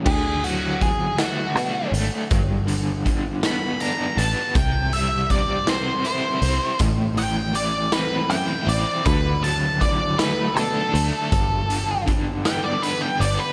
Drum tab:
CC |x-----|------|------|------|
HH |-xxxxx|xxxxxx|xxxxxx|xxxxxx|
SD |---o--|---o--|---o--|---o--|
BD |o-o---|o-o---|o-o---|o-----|

CC |------|------|
HH |xxxxxx|xxxxxx|
SD |---o--|---o--|
BD |o-o---|o-o---|